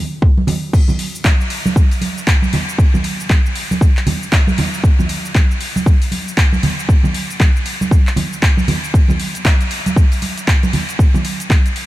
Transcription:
0.22 kick loud
0.38 high conga medium
0.47 open hi-hat medium
0.47 low conga medium
0.73 kick loud
0.73 crash medium
0.73 shaker medium
0.88 high conga medium
0.88 low conga medium
0.88 shaker soft
0.99 open hi-hat loud
1.15 shaker medium
1.25 kick loud
1.25 clap loud
1.25 high conga medium
1.25 shaker medium
1.41 shaker soft
1.50 open hi-hat loud
1.66 high conga medium
1.66 shaker medium
1.76 kick loud
1.76 shaker medium
1.91 open hi-hat medium
1.91 shaker soft
2.01 open hi-hat loud
2.01 high conga medium
2.18 shaker medium
2.27 kick loud
2.27 clap loud
2.27 shaker medium
2.42 high conga medium
2.42 shaker soft
2.53 open hi-hat loud
2.53 low conga medium
2.69 shaker medium
2.79 kick loud
2.79 shaker soft
2.94 high conga medium
2.94 low conga medium
2.94 shaker soft
3.04 open hi-hat loud
3.20 shaker medium
3.30 kick loud
3.30 clap loud
3.30 high conga medium
3.30 shaker soft
3.46 shaker soft
3.55 open hi-hat loud
3.71 high conga medium
3.71 shaker medium
3.81 kick loud
3.81 shaker soft
3.97 clap soft
3.97 shaker soft
4.07 open hi-hat loud
4.07 high conga medium
4.07 low conga medium
4.23 shaker medium
4.32 kick loud
4.32 clap loud
4.32 shaker soft
4.47 high conga medium
4.47 shaker soft
4.58 open hi-hat loud
4.58 low conga medium
4.74 shaker medium
4.84 kick loud
4.84 shaker soft
4.99 high conga medium
4.99 low conga medium
4.99 shaker soft
5.09 open hi-hat loud
5.25 shaker medium
5.35 kick loud
5.35 clap loud
5.35 high conga medium
5.35 shaker soft
5.51 shaker soft
5.61 open hi-hat loud
5.76 high conga medium
5.76 shaker medium
5.86 kick loud
5.86 shaker medium
6.02 open hi-hat medium
6.02 shaker soft
6.12 open hi-hat loud
6.12 high conga medium
6.28 shaker medium
6.37 kick loud
6.37 clap loud
6.37 shaker soft
6.53 high conga loud
6.53 shaker soft
6.63 open hi-hat loud
6.63 low conga medium
6.79 shaker medium
6.89 kick loud
6.89 shaker soft
7.04 high conga medium
7.04 low conga medium
7.04 shaker soft
7.14 open hi-hat loud
7.31 shaker medium
7.40 kick loud
7.40 clap loud
7.40 high conga medium
7.40 shaker soft
7.56 shaker soft
7.66 open hi-hat loud
7.81 high conga medium
7.81 shaker medium
7.91 kick loud
7.91 shaker medium
8.07 clap soft
8.07 shaker soft
8.16 open hi-hat loud
8.16 high conga medium
8.16 low conga medium
8.33 shaker medium
8.43 kick loud
8.43 clap loud
8.43 shaker soft
8.57 high conga loud
8.57 shaker soft
8.68 open hi-hat loud
8.68 low conga medium
8.84 shaker medium
8.94 kick loud
8.94 shaker medium
9.08 high conga loud
9.08 low conga medium
9.08 shaker soft
9.20 open hi-hat loud
9.35 closed hi-hat medium
9.35 shaker medium
9.45 kick loud
9.45 clap loud
9.45 high conga medium
9.45 shaker medium
9.61 closed hi-hat soft
9.61 shaker soft
9.71 open hi-hat loud
9.86 closed hi-hat medium
9.86 high conga loud
9.86 shaker medium
9.96 kick loud
9.96 shaker medium
10.12 open hi-hat medium
10.12 shaker soft
10.22 open hi-hat loud
10.22 high conga medium
10.38 closed hi-hat medium
10.38 shaker medium
10.48 kick loud
10.48 clap loud
10.48 shaker medium
10.63 closed hi-hat soft
10.63 high conga medium
10.63 shaker soft
10.73 open hi-hat loud
10.73 low conga medium
10.89 closed hi-hat medium
10.89 shaker medium
10.99 kick loud
10.99 shaker medium
11.14 high conga medium
11.14 low conga medium
11.14 shaker soft
11.25 open hi-hat loud
11.40 closed hi-hat medium
11.40 shaker medium
11.50 kick loud
11.50 clap loud
11.50 high conga medium
11.50 shaker medium
11.66 closed hi-hat soft
11.66 shaker soft
11.76 open hi-hat loud

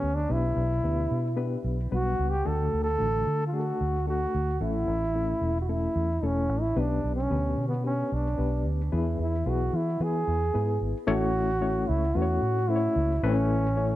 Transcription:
0.00 0.25 D2 medium
0.00 0.18 D3 medium
0.00 0.18 B3 medium
0.00 0.16 C#4 loud
0.00 0.18 G4 medium
0.00 0.19 B4 medium
0.15 0.33 D4 medium
0.29 0.52 B1 medium
0.29 1.07 B2 medium
0.29 0.72 B3 medium
0.29 0.72 D4 medium
0.29 1.66 E4 medium
0.29 0.72 G4 medium
0.29 0.72 B4 medium
0.56 0.79 B1 loud
0.83 1.06 D2 medium
0.83 1.26 B3 medium
0.83 1.26 D4 medium
0.83 1.27 G4 medium
0.83 1.27 B4 medium
1.11 1.56 B2 medium
1.37 1.80 B3 medium
1.37 1.80 D4 medium
1.37 1.80 G4 medium
1.37 1.80 B4 medium
1.64 1.87 B1 medium
1.91 2.14 B1 medium
1.91 2.34 G3 medium
1.91 2.34 B3 medium
1.91 2.34 D4 medium
1.91 2.31 F#4 loud
1.91 2.34 B4 medium
2.19 2.41 C#2 medium
2.30 2.49 G4 medium
2.45 2.68 D2 loud
2.45 3.22 D3 medium
2.45 2.88 A3 medium
2.45 2.88 D4 medium
2.45 2.88 F#4 medium
2.45 2.88 A4 medium
2.45 2.83 A4 medium
2.73 2.95 D2 medium
2.84 3.44 A4 loud
2.98 3.22 A1 medium
2.98 3.41 A3 medium
2.98 3.41 D4 medium
2.98 3.41 F#4 medium
2.98 3.41 A4 medium
3.27 3.71 D3 medium
3.47 3.57 F4 medium
3.53 3.95 A3 medium
3.53 3.96 D4 medium
3.53 3.96 F#4 medium
3.53 4.08 F#4 medium
3.53 3.60 G#4 medium
3.60 3.99 A4 medium
3.81 4.25 D2 medium
4.07 4.49 A3 medium
4.07 4.49 D4 medium
4.07 4.50 F#4 medium
4.07 4.59 F#4 loud
4.07 4.50 A4 medium
4.35 4.57 D2 medium
4.61 4.83 A1 medium
4.61 5.38 A2 medium
4.61 5.03 A3 medium
4.61 5.03 C#4 medium
4.61 5.03 E4 medium
4.61 5.59 E4 loud
4.61 5.03 A4 medium
4.88 5.32 A1 loud
5.15 5.57 A3 medium
5.15 5.57 C#4 medium
5.15 5.57 E4 medium
5.15 5.57 A4 medium
5.41 5.86 E1 medium
5.61 5.72 F#4 medium
5.69 6.11 A3 medium
5.69 6.11 C#4 medium
5.69 6.11 E4 medium
5.69 6.26 E4 loud
5.69 6.11 A4 medium
5.96 6.18 E2 medium
6.22 6.49 E1 medium
6.22 6.65 A3 medium
6.22 6.65 C#4 medium
6.22 6.63 C#4 medium
6.22 6.65 E4 medium
6.22 6.65 A4 medium
6.49 6.72 A1 medium
6.61 6.81 E4 medium
6.76 6.99 B1 loud
6.76 7.54 B2 medium
6.76 7.19 B3 medium
6.76 7.19 D4 medium
6.76 7.14 D4 medium
6.76 7.19 G4 medium
6.76 7.19 B4 medium
7.04 7.26 B1 medium
7.16 7.65 C#4 medium
7.30 7.53 D2 medium
7.30 7.73 D3 medium
7.30 7.73 B3 medium
7.30 7.73 G4 medium
7.30 7.73 B4 medium
7.58 8.02 B2 medium
7.69 7.84 B3 medium
7.84 8.26 B3 medium
7.84 8.15 C#4 medium
7.84 8.27 D4 medium
7.84 8.27 G4 medium
7.84 8.27 B4 medium
8.12 8.34 B1 medium
8.12 8.67 D4 medium
8.38 8.66 B1 medium
8.38 8.80 B3 medium
8.38 8.80 D4 medium
8.38 8.81 G4 medium
8.38 8.81 B4 medium
8.66 8.88 D2 medium
8.92 9.15 E2 loud
8.92 9.70 E3 medium
8.92 9.35 B3 medium
8.92 9.35 E4 medium
8.92 9.19 E4 medium
8.92 9.35 G#4 medium
8.92 9.35 B4 medium
9.19 9.42 E2 medium
9.19 9.51 E4 medium
9.46 9.68 B1 medium
9.46 9.89 B3 medium
9.46 9.89 E4 medium
9.46 9.78 F#4 medium
9.46 9.89 G#4 medium
9.46 9.89 B4 medium
9.73 9.96 E3 loud
9.73 10.04 E4 medium
10.00 10.23 E3 loud
10.00 10.43 B3 medium
10.00 10.43 E4 medium
10.00 10.43 G#4 medium
10.00 10.82 G#4 loud
10.00 10.43 B4 medium
10.27 10.50 E2 medium
10.54 10.77 G#2 medium
10.54 10.96 B3 medium
10.54 10.97 E4 medium
10.54 10.96 G#4 medium
10.54 10.97 B4 medium
10.81 10.92 G#1 medium
11.07 11.85 A1 loud
11.07 11.84 A2 medium
11.07 11.50 A3 loud
11.07 11.50 C#4 loud
11.07 11.50 E4 loud
11.07 11.90 F#4 loud
11.07 11.50 A4 loud
11.07 11.50 C#5 loud
11.61 12.04 A3 medium
11.61 12.04 C#4 medium
11.61 12.04 E4 medium
11.61 12.04 A4 medium
11.61 12.04 C#5 medium
11.89 12.11 C#2 medium
11.89 12.19 E4 medium
12.15 12.38 E2 loud
12.15 12.57 A3 medium
12.15 12.58 C#4 medium
12.15 12.58 E4 medium
12.15 12.71 F#4 loud
12.15 12.58 A4 medium
12.15 12.22 B4 medium
12.22 12.61 C#5 medium
12.42 12.87 A2 medium
12.69 13.11 A3 medium
12.69 13.11 C#4 medium
12.69 13.11 E4 medium
12.69 13.23 E4 loud
12.69 13.11 A4 medium
12.69 12.76 C5 medium
12.76 13.15 C#5 medium
12.96 13.18 C#2 medium
13.23 13.96 A1 loud
13.23 13.96 A2 medium
13.23 13.66 A3 loud
13.23 13.66 C#4 loud
13.23 13.96 C#4 medium
13.23 13.66 E4 medium
13.23 13.66 A4 loud
13.23 13.66 B4 loud
13.77 13.96 A3 medium
13.77 13.96 C#4 medium
13.77 13.96 E4 medium
13.77 13.96 A4 medium
13.77 13.96 C#5 medium

